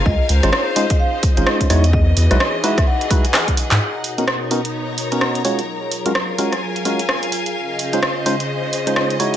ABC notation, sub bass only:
X:1
M:4/4
L:1/16
Q:"Swing 16ths" 1/4=128
K:B
V:1 name="Sub bass" clef=bass
C,, z C,, G,,, z6 z G,,, z2 E,,2- | E,,2 E,, B,,, z8 z3 G,, | z16 | z16 |
z16 |]